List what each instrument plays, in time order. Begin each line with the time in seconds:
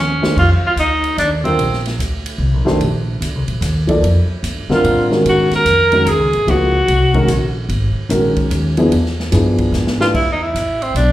Already playing: upright bass D#2
0.00 tenor saxophone C#4
0.22 grand piano D#3 A3 D4 G4 C5, muted upright bass stroke, snare
0.37 upright bass F2, tenor saxophone F4, kick, crash
0.62 muted upright bass stroke
0.67 tenor saxophone F4
0.76 upright bass D2, tenor saxophone D#4, hi-hat pedal, ride
1.04 ride
1.18 upright bass D#2, tenor saxophone D4, hi-hat pedal, ride
1.44 grand piano D3 G3 C4 F4 A#4, tenor saxophone C4, ride
1.58 upright bass A#1, ride
1.73 snare
1.85 snare, ride
1.99 upright bass D2, hi-hat pedal, ride
2.26 ride
2.38 upright bass C2
2.53 upright bass A#1
2.65 upright bass F1, grand piano D#3 A3 D4 G4 C5, snare
2.81 upright bass A#1, ride
3.21 upright bass D2, hi-hat pedal, ride
3.35 upright bass C2
3.48 upright bass A#1, ride
3.61 upright bass D#2, snare, hi-hat pedal, ride
3.87 grand piano F3 A#3 D#4 A4 D5, kick, ride
4.03 upright bass F2, ride
4.28 muted upright bass stroke
4.43 upright bass G2, hi-hat pedal, ride
4.69 grand piano D3 G3 C4 F4 A#4, muted upright bass stroke, snare
4.74 tenor saxophone F4
4.84 upright bass A2, ride
5.10 grand piano D#3 G#3 C#4 F#4 A#4, snare
5.25 upright bass G#2, tenor saxophone F#4, ride
5.51 muted upright bass stroke, snare, ride
5.55 tenor saxophone A#4
5.65 upright bass F2, hi-hat pedal, ride
5.92 grand piano D#3 G#3 C#4 F#4 A#4, ride
6.06 upright bass D#2, tenor saxophone G#4, hi-hat pedal, ride
6.19 upright bass C#2
6.33 upright bass G#1, ride
6.47 upright bass C#2, grand piano F3 A#3 D#4 G#4 C5, tenor saxophone F#4, ride
6.88 upright bass C2, ride
7.14 grand piano D#3 G#3 C#4 F#4 A#4, kick, ride
7.28 upright bass A#1, hi-hat pedal, ride
7.69 upright bass G#1, ride
7.95 muted upright bass stroke
8.09 upright bass A#1, grand piano D#3 G#3 C#4 F#4 A#4, hi-hat pedal, ride
8.36 muted upright bass stroke, kick, ride
8.50 upright bass D#2, hi-hat pedal, ride
8.77 grand piano F3 B3 D4 E4 G#4, ride
8.91 upright bass E2, ride
9.06 snare
9.20 snare
9.32 upright bass G2, grand piano F3 B3 D4 E4 G#4, snare, hi-hat pedal, ride
9.58 kick, ride
9.72 upright bass G#2, snare, hi-hat pedal
9.87 snare
9.99 grand piano E3 A3 D4 G4 B4, tenor saxophone F4, snare
10.14 upright bass E2, tenor saxophone E4, kick, crash
10.32 tenor saxophone D#4
10.43 tenor saxophone E4
10.55 upright bass A1, hi-hat pedal, ride
10.82 tenor saxophone C4, ride
10.94 upright bass B1, tenor saxophone D4, hi-hat pedal, ride